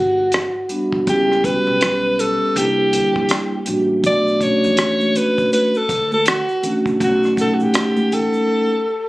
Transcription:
Already playing: upright bass G1, alto saxophone F#4
0.32 cross-stick, closed hi-hat
0.68 vibraphone G3 B3 D4 F#4, closed hi-hat
0.92 kick
1.06 upright bass C#2, vibraphone G3 B3 C#4 E4, alto saxophone G4, kick, closed hi-hat
1.32 cross-stick
1.42 vibraphone G3 B3 C#4 F#4, alto saxophone B4, kick, closed hi-hat
1.52 vibraphone G4
1.67 upright bass B1
1.81 cross-stick, closed hi-hat
2.19 alto saxophone A4, closed hi-hat
2.54 upright bass C2, vibraphone G3 A#3 D4 E4, closed hi-hat
2.58 alto saxophone G4
2.93 upright bass D2, closed hi-hat
3.16 kick
3.29 cross-stick, closed hi-hat
3.65 upright bass A1, vibraphone G3 A#3 D4 F#4, closed hi-hat
4.02 upright bass B1, vibraphone A3 B3 D4 F#4, kick, closed hi-hat, shaker
4.07 alto saxophone D5
4.27 shaker
4.40 vibraphone A3 C#4 D4 F#4, alto saxophone C#5, kick, closed hi-hat, shaker
4.64 upright bass E2, shaker
4.77 cross-stick, closed hi-hat, shaker
5.01 high conga, shaker
5.15 alto saxophone B4, closed hi-hat, high conga, low conga, shaker
5.38 kick, shaker
5.53 alto saxophone B4, closed hi-hat, high conga, shaker
5.74 alto saxophone A4, shaker
5.89 upright bass D2, kick, closed hi-hat, shaker
6.12 alto saxophone A4, high conga, shaker
6.26 alto saxophone F#4, cross-stick, closed hi-hat, shaker
6.48 shaker
6.62 vibraphone A3 C#4 D4 F#4, closed hi-hat, low conga, shaker
6.86 kick, shaker
6.99 upright bass B1, vibraphone A3 C#4 D#4 F#4, kick, closed hi-hat, shaker
7.03 alto saxophone F#4
7.23 cross-stick, shaker
7.36 vibraphone A3 C#4 D#4 F#5, kick, closed hi-hat, shaker
7.41 alto saxophone A4
7.54 alto saxophone F#4
7.60 upright bass A1, alto saxophone G4, shaker
7.74 cross-stick, closed hi-hat, shaker
7.97 high conga, shaker
8.12 alto saxophone A4, closed hi-hat, high conga, low conga, shaker
8.33 shaker

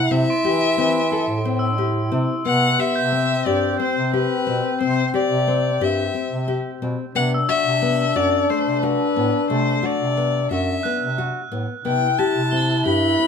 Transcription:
Already playing: french horn E4, violin F#5
0.11 bass clarinet C3, nylon-string guitar C4, violin E5
0.30 crotales C6
0.44 bass clarinet E3, nylon-string guitar G4
0.78 bass clarinet E3, nylon-string guitar C4
1.12 nylon-string guitar A4
1.28 bass clarinet A2
1.44 french horn C4, nylon-string guitar C4
1.59 crotales E6
1.78 french horn E4, nylon-string guitar G4
2.12 bass clarinet C3, nylon-string guitar C4
2.45 bass clarinet C3, nylon-string guitar B3, french horn B3, violin F#5
2.79 nylon-string guitar G4, violin E5
2.95 bass clarinet C3, crotales G6
3.12 nylon-string guitar C4, french horn C4
3.46 bass clarinet G2, nylon-string guitar G4, violin D5
3.80 nylon-string guitar C4, violin C5
3.96 bass clarinet C3
4.13 nylon-string guitar G4, violin B4
4.47 bass clarinet B2, nylon-string guitar C4
4.80 bass clarinet C3, nylon-string guitar C4, violin C5
5.14 nylon-string guitar G4, violin D5
5.30 bass clarinet C3
5.48 nylon-string guitar C4
5.80 bass clarinet G2, nylon-string guitar G4, violin E5
6.14 nylon-string guitar C4
6.31 bass clarinet C3
6.48 nylon-string guitar G4
6.81 bass clarinet B2, nylon-string guitar C4
7.15 bass clarinet C3, nylon-string guitar B3, french horn D4, violin F#5
7.34 crotales E6
7.49 nylon-string guitar F#4, violin E5
7.65 bass clarinet C3
7.82 nylon-string guitar B3
8.16 bass clarinet F#2, nylon-string guitar F#4, violin D5
8.50 nylon-string guitar A3, violin C5
8.66 bass clarinet C3
8.83 nylon-string guitar F#4, violin B4
9.16 bass clarinet A2, nylon-string guitar B3
9.50 bass clarinet C3, nylon-string guitar A3, violin C5
9.83 nylon-string guitar F#4, violin D5
10.00 bass clarinet C3
10.17 nylon-string guitar B3
10.50 bass clarinet F#2, nylon-string guitar F#4, violin E5
10.83 nylon-string guitar B3, crotales F#6
11.01 bass clarinet C3
11.18 nylon-string guitar F#4
11.51 bass clarinet A2, nylon-string guitar B3
11.84 bass clarinet C3, nylon-string guitar B3, french horn E4, violin G5
12.19 nylon-string guitar G4, violin A5
12.35 bass clarinet C3
12.51 nylon-string guitar C4, crotales G7
12.56 crotales B7
12.62 crotales C8
12.85 bass clarinet G2, nylon-string guitar G4, violin B5
13.19 nylon-string guitar C4

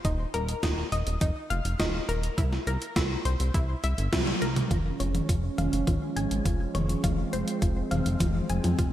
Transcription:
0.05 analog synth bass D#1, synth arpeggio sound D#4, kick, closed hi-hat
0.34 analog synth bass D#1, synth arpeggio sound A#4, closed hi-hat
0.49 closed hi-hat
0.63 analog synth bass D#1, synth arpeggio sound D#4, kick, snare, closed hi-hat
0.92 analog synth bass D#1, synth arpeggio sound D#5, closed hi-hat
1.07 analog synth bass D#1, closed hi-hat
1.21 analog synth bass F1, synth arpeggio sound D#4, kick, closed hi-hat
1.50 analog synth bass F1, synth arpeggio sound F5, closed hi-hat
1.65 analog synth bass F1, closed hi-hat
1.80 analog synth bass D#1, synth arpeggio sound D#4, kick, snare, closed hi-hat
2.09 analog synth bass D#1, synth arpeggio sound A#4, closed hi-hat
2.23 closed hi-hat
2.38 analog synth bass C2, synth arpeggio sound E4, kick, closed hi-hat
2.53 snare
2.67 analog synth bass C2, synth arpeggio sound A#4, closed hi-hat
2.82 closed hi-hat
2.96 analog synth bass C2, synth arpeggio sound E4, kick, snare, closed hi-hat
3.25 analog synth bass C2, synth arpeggio sound C5, closed hi-hat
3.40 analog synth bass C2, closed hi-hat
3.54 analog synth bass C2, synth arpeggio sound E4, kick, closed hi-hat
3.84 analog synth bass C2, synth arpeggio sound E5, closed hi-hat
3.98 analog synth bass G1, closed hi-hat
4.13 analog synth bass C2, synth arpeggio sound E4, kick, snare, closed hi-hat, high tom
4.27 high tom
4.42 analog synth bass C2, synth arpeggio sound A#4, closed hi-hat
4.56 closed hi-hat, mid tom
4.71 analog synth bass F1, analog synth pad F3 G#3 C#4, synth arpeggio sound F4, kick, closed hi-hat, mid tom
5.00 analog synth bass F1, synth arpeggio sound C#5, closed hi-hat
5.15 closed hi-hat, mid tom
5.29 analog synth bass F1, synth arpeggio sound F4, kick, closed hi-hat
5.58 analog synth bass F1, synth arpeggio sound F5, closed hi-hat, mid tom
5.73 analog synth bass F1, closed hi-hat
5.87 analog synth bass G#1, synth arpeggio sound F4, kick, closed hi-hat, mid tom
6.16 analog synth bass G#1, synth arpeggio sound G#5, closed hi-hat
6.31 analog synth bass G#1, closed hi-hat
6.46 analog synth bass F1, synth arpeggio sound F4, kick, closed hi-hat
6.75 analog synth bass F1, synth arpeggio sound C#5, closed hi-hat, mid tom
6.89 closed hi-hat
7.04 analog synth bass F1, analog synth pad C4, synth arpeggio sound F4, kick, closed hi-hat, mid tom
7.33 analog synth bass F1, synth arpeggio sound C5, closed hi-hat
7.48 closed hi-hat
7.62 analog synth bass F1, synth arpeggio sound F4, kick, closed hi-hat
7.91 analog synth bass F1, synth arpeggio sound F5, closed hi-hat, mid tom
8.06 analog synth bass F1, closed hi-hat
8.20 analog synth bass F1, synth arpeggio sound F4, kick, closed hi-hat, mid tom
8.50 analog synth bass F1, synth arpeggio sound G#5, closed hi-hat
8.64 analog synth bass F2, closed hi-hat, mid tom
8.79 analog synth bass F1, synth arpeggio sound F4, kick, closed hi-hat

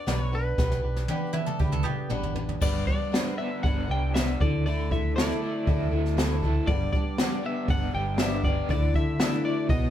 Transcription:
Already playing: clean electric guitar D5
0.06 fingered electric bass B1, steel-string acoustic guitar B2 F#3 B3 D4 F#4 B4, snare, open hi-hat
0.22 clean electric guitar C#5
0.32 steel-string acoustic guitar B3 D4 F#4 B4, clean electric guitar B4, open hi-hat
0.58 fingered electric bass B1, steel-string acoustic guitar B3 D4 G4 B4, kick, snare
0.71 snare
0.82 fingered electric bass B1, steel-string acoustic guitar D4 G4 B4
0.96 snare
1.08 steel-string acoustic guitar B3 D4 G4 B4, mandolin G4, high tom
1.33 mandolin E4, steel-string acoustic guitar G4 B4, high tom
1.37 steel-string acoustic guitar D4
1.46 mandolin A4, clean electric guitar A4, mid tom
1.59 fingered electric bass D2, steel-string acoustic guitar B3 D4 G4 B4, mandolin G4, kick
1.72 mandolin A4, mid tom
1.83 mandolin B3 G4, steel-string acoustic guitar D4 G4 B4, mid tom
2.09 fingered electric bass A1, steel-string acoustic guitar B3 D4 G4 B4, mid tom
2.23 floor tom
2.35 steel-string acoustic guitar D4 G4 B4, floor tom
2.49 floor tom
2.60 fingered electric bass G1, overdriven electric guitar G2, steel-string acoustic guitar G3 B3 D4 B4, clean electric guitar D5, kick, crash
2.87 steel-string acoustic guitar B3 D4 B4, clean electric guitar D5, kick
3.11 steel-string acoustic guitar G3 B3 D4 B4, snare, open hi-hat
3.36 steel-string acoustic guitar B3 D4 B4, clean electric guitar E5
3.63 fingered electric bass G1, steel-string acoustic guitar G3 B3 D4 B4, clean electric guitar F#5, kick, open hi-hat
3.87 fingered electric bass C2, overdriven electric guitar G3, steel-string acoustic guitar B3 D4 B4, clean electric guitar G5
4.14 steel-string acoustic guitar G3 B3 D4 B4, clean electric guitar E5, snare, open hi-hat
4.40 fingered electric bass D2, overdriven electric guitar D3, steel-string acoustic guitar A3 E4 A4, clean electric guitar D5, kick
4.66 steel-string acoustic guitar D3 A3 E4 A4, clean electric guitar D5, open hi-hat
4.90 steel-string acoustic guitar A3 E4 A4, clean electric guitar E5, kick
5.16 steel-string acoustic guitar D3 A3 E4 A4, clean electric guitar D5, snare, open hi-hat
5.30 snare
5.42 steel-string acoustic guitar A3 E4 A4
5.67 fingered electric bass D2, steel-string acoustic guitar D3 A3 E4 A4, kick, open hi-hat
5.91 fingered electric bass D2, overdriven electric guitar D3, steel-string acoustic guitar A3 E4 A4
6.06 snare
6.17 steel-string acoustic guitar D3 A3 E4 A4, snare, open hi-hat
6.43 steel-string acoustic guitar A3 E4 A4, kick
6.67 fingered electric bass G1, steel-string acoustic guitar G2 D3 G3 B3 D4 G4, clean electric guitar D5, kick, open hi-hat
6.93 steel-string acoustic guitar G3 B3 D4 G4, clean electric guitar D5, kick
7.18 steel-string acoustic guitar G2 D3 G3 B3 D4 G4, snare, open hi-hat
7.44 steel-string acoustic guitar G3 B3 D4 G4, clean electric guitar E5
7.68 fingered electric bass G1, steel-string acoustic guitar G3 B3 D4 G4, clean electric guitar F#5, kick, open hi-hat
7.94 fingered electric bass G1, steel-string acoustic guitar G3 B3 D4 G4, clean electric guitar G5
8.17 steel-string acoustic guitar G2 D3 G3 B3 D4 G4, clean electric guitar E5, snare, open hi-hat
8.44 steel-string acoustic guitar B3 D4 G4, clean electric guitar D5, kick
8.48 steel-string acoustic guitar G3
8.69 fingered electric bass D2, steel-string acoustic guitar D3 E3 A3 D4 E4, clean electric guitar D5, kick, open hi-hat
8.94 steel-string acoustic guitar D4 E4, clean electric guitar E5, kick
8.99 steel-string acoustic guitar A3
9.19 steel-string acoustic guitar D3 E3 A3 D4 E4, clean electric guitar E5, snare, open hi-hat
9.32 snare
9.45 steel-string acoustic guitar A3 D4 E4, clean electric guitar D5
9.69 fingered electric bass B1, overdriven electric guitar B2, steel-string acoustic guitar F#3 B3 D#4 F#4, clean electric guitar D#5, kick, open hi-hat

